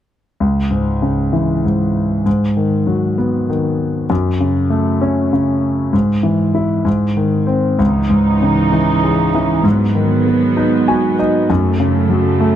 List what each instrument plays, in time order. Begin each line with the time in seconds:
0.40 grand piano C#2
0.71 grand piano G#2
1.02 grand piano C#3
1.33 grand piano E3
1.65 grand piano G#2
2.26 grand piano G#2
2.57 grand piano D#3
2.87 grand piano F#3
3.18 grand piano B3
3.50 grand piano D#3
4.10 grand piano F#2
4.40 grand piano C#3
4.70 grand piano A3
5.01 grand piano C#4
5.33 grand piano C#3
5.93 grand piano G#2
6.23 grand piano E3
6.55 grand piano E4
6.85 grand piano G#2
7.17 grand piano D#3
7.47 grand piano C4
7.79 grand piano C#2, string section E3 C#4 D#4
8.10 grand piano G#2
8.42 grand piano C#3
8.72 grand piano E3
9.04 grand piano G#3
9.35 grand piano E3
9.64 grand piano G#2, string section G#2 F#3 B3
9.95 grand piano D#3
10.26 grand piano B3
10.57 grand piano D#4
10.88 grand piano F#4 G#5
11.19 grand piano D#4 D#5
11.50 grand piano F#2, string section F#2 C#3 A3
11.80 grand piano C#3
12.10 grand piano F#3
12.40 grand piano A3